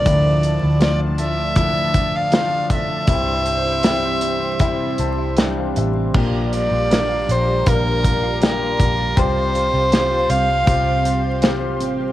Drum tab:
CC |--------|--------|x-------|--------|
HH |xxxxxxxx|xxxxxxxx|-xxxxxxx|xxxxxxxx|
SD |--o---o-|--o---o-|--o---o-|--o---o-|
BD |o---oo-o|o---o---|o---oo-o|o---o---|